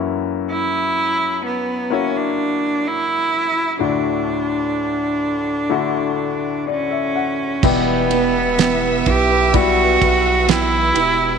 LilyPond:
<<
  \new Staff \with { instrumentName = "String section" } { \time 4/4 \key e \dorian \tempo 4 = 63 r1 | r1 | <b' e'' e'''>1 | }
  \new Staff \with { instrumentName = "Nylon-string guitar" } { \time 4/4 \key e \dorian r1 | r1 | <e b e' g'>8 <b e' g'>8 <e b e' g'>8 <b e'>4. <e b e' g'>8 <b e' g'>8 | }
  \new Staff \with { instrumentName = "Grand piano" } { \time 4/4 \key e \dorian << { r1 | r2. d''16 e''16 fis''8 | r1 | } \\ { <ais cis' e' fis'>4. r8 <ais e' fis' cis''>2 | <a d' e' fis'>2 <d a e' fis'>2 | <g b e' g'>2 <g b e' fis'>2 | } >> }
  \new Staff \with { instrumentName = "Grand piano" } { \clef bass \time 4/4 \key e \dorian <fis, e>2.~ <fis, e>8 r8 | <d, a,>1 | b,4. r2 r8 | }
  \new Staff \with { instrumentName = "Cello" } { \time 4/4 \key e \dorian r8 e'4 b8 cis'16 d'8. e'4 | d'2. cis'4 | b4. g'8 fis'4 e'4 | }
  \new Staff \with { instrumentName = "Sub bass" } { \clef bass \time 4/4 \key e \dorian r1 | r1 | e,,4. b,,4 b,,4 e,,8 | }
  \new DrumStaff \with { instrumentName = "Drums" } \drummode { \time 4/4 r4 r4 r4 r4 | r4 r4 r4 r4 | <cymc bd>8 cymr8 <cymr sn>8 <bd cymr>8 <bd cymr>8 <bd cymr>8 <cymr sn>8 cymr8 | }
>>